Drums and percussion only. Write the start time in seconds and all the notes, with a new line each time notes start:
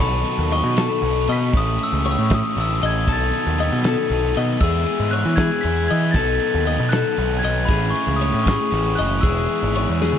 0.25 ride
0.51 ride
0.77 snare, ride
1.02 ride
1.28 ride
1.53 kick, ride
1.79 ride
2.05 ride
2.30 kick, snare, ride
2.57 ride
2.82 ride
3.08 kick, ride
3.33 ride
3.58 ride
3.84 snare, ride
4.10 ride
4.34 ride
4.60 kick, crash
4.86 ride
5.11 ride
5.37 kick, snare, ride
5.63 ride
5.88 ride
6.14 kick, ride
6.40 ride
6.66 ride
6.92 snare, ride
7.17 ride
7.43 ride
7.68 kick, ride
7.95 ride
8.21 ride
8.46 kick, snare, ride
8.72 ride
8.97 ride
9.23 kick, ride
9.49 ride
9.75 ride
10.02 snare
10.12 high tom